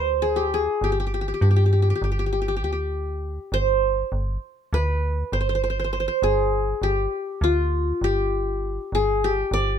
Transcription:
Already playing: D2 G4 C5
0.22 G#4
0.36 G4
0.54 G#4
0.81 G1 G4
0.92 G4
1.00 G4
1.07 G4
1.14 G4
1.21 G4
1.28 G4
1.34 G4
1.41 G2 G4
1.51 G4
1.56 G4
1.66 G4
1.73 G4
1.82 G4
1.90 G4
1.95 G4
2.02 G1 G4
2.12 G4
2.19 G4
2.26 G4
2.33 G4
2.42 G4
2.48 G4
2.56 G4
2.62 D2 G4
2.72 G4
3.52 G1 C5
4.12 G1
4.73 D2 B4
5.32 G1 C5
5.41 C5
5.49 C5
5.55 C5
5.64 C5
5.70 C5
5.79 C5
5.84 C5
5.93 C5
6.00 C5
6.08 C5
6.22 G1 G#4
6.82 G1 G4
7.41 D2 F4
8.01 G1 G4
8.92 G1 G#4
9.24 G4
9.51 G1 D5

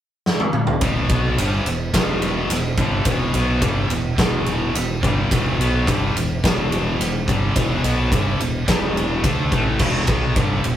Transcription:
0.26 snare
0.40 high tom
0.53 mid tom
0.67 floor tom
0.81 E1 E2 B2 E3, kick, ride
1.09 B1 B2 F#3 B3, kick, ride
1.38 G1 G2 D3 G3, ride
1.65 E1 E2 B2, ride
1.94 E1 E2 B2 E3, kick, snare, ride
2.22 ride
2.49 E1 E2 B2, snare, ride
2.77 G1 G2 D3, kick, ride
2.82 G3
3.05 E1 E2, kick, ride
3.09 B2 E3
3.33 B1 B2 F#3 B3, ride
3.62 G1 G2 D3 G3, kick, ride
3.90 E1 E2 B2, ride
4.18 E1 E2 B2 E3, kick, snare, ride
4.46 ride
4.75 E1 E2 B2, ride
5.03 G1 G2 D3 G3, kick, ride
5.31 E1 E2 B2 E3, kick, ride
5.58 B1 B2 F#3 B3, ride
5.87 G1 G2 D3 G3, kick, ride
6.15 E1 E2 B2, ride
6.44 E1 E2 B2 E3, kick, snare, ride
6.72 ride
6.99 E1 E2 B2, snare, ride
7.28 G1 G2 D3 G3, kick, ride
7.56 E1 E2 B2 E3, kick, ride
7.84 B1 B2 F#3 B3, ride
8.11 G1 G2 D3 G3, kick, ride
8.39 E1 E2 B2, ride
8.68 E1 E2 B2 E3, kick, snare, ride
8.97 ride
9.24 D2 D3 A3 D4, kick, ride
9.52 A1 A2 E3 A3, kick, ride
9.79 E1 E2 B2 E3, kick, crash
10.07 B1 B2 F#3 B3, kick, ride
10.36 G1 G2 D3 G3, kick, ride
10.64 E1 E2 B2, ride

